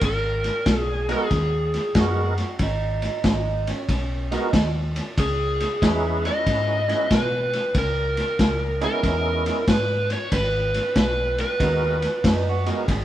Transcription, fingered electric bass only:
0.02 0.48 G#1 medium
0.66 1.13 B1 medium
1.31 1.77 D#2 medium
1.95 2.41 F#2 medium
2.60 3.06 G#1 medium
3.24 3.70 G#1 medium
3.89 4.35 B1 medium
4.53 5.00 D#2 medium
5.17 5.64 C#2 medium
5.82 6.28 E2 medium
6.46 6.92 G#2 medium
7.11 7.57 B2 medium
7.75 8.21 C#2 medium
8.39 8.85 C#2 medium
9.04 9.50 E2 medium
9.68 10.14 G#2 medium
10.32 10.78 G#1 medium
10.96 11.42 B1 medium
11.60 12.06 D#2 medium
12.24 12.70 F#2 medium
12.88 13.05 G#1 loud

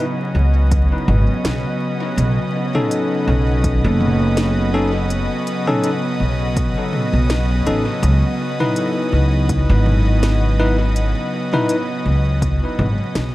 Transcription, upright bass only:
0.35 0.88 C#2 medium
1.08 1.26 G#1 loud
1.45 1.63 B1 medium
2.17 2.36 B1 loud
3.27 3.81 B1 medium
3.84 5.27 F#1 loud
6.20 6.73 B1 medium
7.13 7.63 B1 medium
7.66 7.84 A1 medium
8.03 8.21 C#2 loud
9.12 9.66 C#2 medium
9.69 11.12 G#1 loud
12.05 12.59 C#2 medium
12.79 12.97 G#1 loud
13.15 13.33 B1 medium

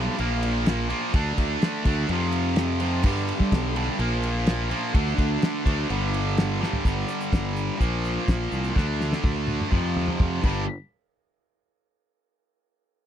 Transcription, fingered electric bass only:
0.19 0.92 A#1 medium
1.14 1.32 D2 loud
1.37 1.56 D2 medium
1.85 2.03 D2 medium
2.09 3.04 F2 loud
3.04 3.31 G2 loud
3.40 3.49 G3 medium
3.52 3.88 B1 loud
3.99 4.72 A#1 loud
4.95 5.13 D2 loud
5.18 5.37 D2 medium
5.66 5.84 D2 medium
5.90 6.63 G1 loud
6.85 7.03 G1 medium
7.33 7.69 G1 loud
7.80 8.17 A#1 medium
8.28 8.46 A#1 medium
8.52 8.71 C2 medium
8.76 9.13 D2 loud
9.23 9.60 D2 medium
9.72 10.08 F2 medium
10.20 10.38 F2 medium
10.43 10.66 G1 loud

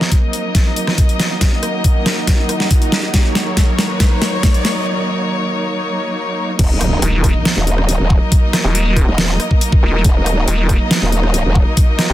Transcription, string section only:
0.00 6.55 F#3 medium
0.00 6.55 A#3 medium
0.00 6.55 D#4 medium
0.00 6.55 A#4 medium
0.00 3.10 D#5 medium
3.14 6.56 C#5 medium
6.59 12.13 F#3 medium
6.59 12.13 A#3 medium
6.59 12.13 D#4 medium
6.59 12.13 A#4 medium
6.59 12.13 D#5 medium

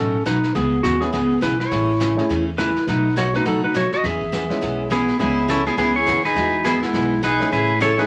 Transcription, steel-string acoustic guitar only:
0.00 0.16 B2 medium
0.00 0.16 F#3 medium
0.00 0.16 A3 medium
0.00 0.16 D#4 medium
0.00 0.16 F#4 medium
0.25 0.37 B2 medium
0.25 0.37 F#3 medium
0.25 0.37 A3 medium
0.25 0.37 D#4 medium
0.25 0.37 F#4 medium
0.55 0.74 C#3 soft
0.55 0.74 E3 medium
0.55 0.75 B3 medium
0.55 0.75 C#4 soft
0.55 0.75 G#4 medium
0.83 0.95 C#3 medium
0.83 0.95 E3 medium
0.83 0.95 B3 medium
0.83 0.95 C#4 medium
0.83 0.95 G#4 medium
1.12 1.32 C#3 medium
1.12 1.32 E3 medium
1.12 1.32 B3 medium
1.12 1.32 C#4 medium
1.12 1.33 G#4 medium
1.41 1.53 C#3 medium
1.41 1.53 E3 medium
1.41 1.53 B3 medium
1.41 1.53 C#4 medium
1.41 1.53 G#4 medium
1.71 1.91 C#3 medium
1.71 1.91 E3 medium
1.71 1.91 A3 medium
1.71 1.91 C#4 medium
1.71 1.91 G#4 medium
2.00 2.11 C#3 medium
2.00 2.11 E3 medium
2.00 2.11 A3 medium
2.00 2.11 C#4 medium
2.00 2.12 G#4 medium
2.29 2.49 C#3 medium
2.29 2.49 E3 medium
2.29 2.49 A3 medium
2.29 2.49 C#4 medium
2.29 2.49 G#4 medium
2.58 2.69 C#3 medium
2.58 2.69 E3 medium
2.58 2.69 A3 medium
2.58 2.69 C#4 medium
2.58 2.69 G#4 medium
2.87 3.07 B2 soft
2.87 3.07 F#3 medium
2.87 3.07 A3 medium
2.87 3.07 D#4 medium
2.87 3.07 F#4 medium
3.16 3.27 B2 medium
3.16 3.27 F#3 medium
3.16 3.27 A3 medium
3.16 3.27 D#4 medium
3.16 3.27 F#4 medium
3.45 3.65 B2 medium
3.45 3.65 F#3 medium
3.45 3.65 A3 medium
3.45 3.65 D#4 medium
3.45 3.65 F#4 medium
3.74 3.85 B2 medium
3.74 3.85 F#3 medium
3.74 3.85 A3 medium
3.74 3.85 D#4 medium
3.74 3.86 F#4 medium
4.04 4.23 E3 medium
4.04 4.23 B3 medium
4.04 4.23 C#4 medium
4.04 4.24 G#4 medium
4.32 4.43 E3 medium
4.32 4.43 B3 medium
4.32 4.44 C#4 medium
4.32 4.44 G#4 medium
4.61 4.81 E3 medium
4.61 4.81 B3 medium
4.61 4.81 C#4 medium
4.61 4.81 G#4 medium
4.90 5.01 E3 medium
4.90 5.01 B3 medium
4.90 5.01 C#4 medium
4.90 5.01 G#4 medium
5.19 5.39 C#3 medium
5.19 5.39 E3 medium
5.19 5.39 B3 medium
5.19 5.39 C#4 medium
5.19 5.39 G#4 medium
5.48 5.59 C#3 medium
5.48 5.59 E3 medium
5.48 5.59 B3 medium
5.48 5.59 C#4 medium
5.48 5.60 G#4 medium
5.77 5.97 C#3 medium
5.77 5.97 E3 medium
5.77 5.97 B3 medium
5.77 5.97 C#4 medium
5.77 5.98 G#4 medium
6.06 6.17 C#3 medium
6.06 6.17 E3 medium
6.06 6.18 B3 medium
6.06 6.18 C#4 medium
6.06 6.18 G#4 medium
6.35 6.55 E3 medium
6.35 6.55 B3 medium
6.35 6.55 D#4 medium
6.35 6.55 G#4 medium
6.64 6.75 E3 medium
6.64 6.75 B3 medium
6.64 6.76 D#4 medium
6.64 6.76 G#4 medium
6.93 7.13 E3 medium
6.93 7.13 B3 medium
6.93 7.13 D#4 medium
6.93 7.14 G#4 medium
7.23 7.34 E3 medium
7.23 7.34 B3 medium
7.23 7.34 D#4 medium
7.23 7.34 G#4 medium
7.51 7.71 C#3 medium
7.51 7.71 E3 medium
7.51 7.71 A3 medium
7.51 7.72 C#4 medium
7.51 7.72 G#4 medium
7.80 7.91 C#3 medium
7.80 7.91 E3 medium
7.80 7.92 A3 medium
7.80 7.92 C#4 medium
7.80 7.92 G#4 medium

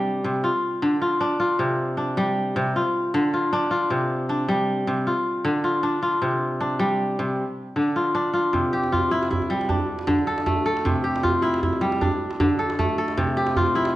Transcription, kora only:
0.00 0.23 C3 medium
0.00 0.48 G3 medium
0.00 1.20 D4 medium
0.00 0.43 F4 medium
0.24 0.48 C3 medium
0.43 1.01 F4 medium
0.82 1.64 D3 medium
1.01 1.39 F4 medium
1.20 1.97 D4 medium
1.40 2.75 F4 medium
1.59 2.55 C3 medium
1.97 3.52 D4 medium
2.17 2.80 G3 medium
2.56 2.80 C3 medium
2.76 3.33 F4 medium
3.14 3.96 D3 medium
3.33 3.70 F4 medium
3.52 4.29 D4 medium
3.71 5.06 F4 medium
3.90 4.86 C3 medium
4.29 5.83 D4 medium
4.48 5.11 G3 medium
4.87 5.11 C3 medium
5.07 5.64 F4 medium
5.44 6.27 D3 medium
5.64 6.02 F4 medium
5.83 6.60 D4 medium
6.03 7.54 F4 medium
6.22 7.18 C3 medium
6.61 8.14 D4 medium
6.80 7.43 G3 medium
7.19 7.43 C3 medium
7.76 8.58 D3 medium
7.96 8.33 F4 medium
8.15 9.69 D4 medium
8.34 8.92 F4 medium
8.53 9.74 C3 medium
8.73 10.14 G4 medium
8.92 10.44 F4 medium
9.11 9.30 E4 medium
9.30 10.87 E4 medium
9.50 9.74 G3 medium
9.69 11.37 D4 medium
10.07 10.90 D3 medium
10.27 10.65 A4 medium
10.46 12.46 A3 medium
10.66 11.97 A4 medium
10.85 12.06 C3 medium
11.04 12.45 G4 medium
11.23 12.75 F4 medium
11.42 11.62 E4 medium
11.63 13.19 E4 medium
11.81 12.06 G3 medium
12.01 13.69 D4 medium
12.40 13.22 D3 medium
12.59 12.97 A4 medium
12.79 13.96 A3 medium
12.98 13.96 A4 medium
13.17 13.96 C3 medium
13.37 13.96 G4 medium
13.57 13.96 F4 medium
13.75 13.95 E4 medium

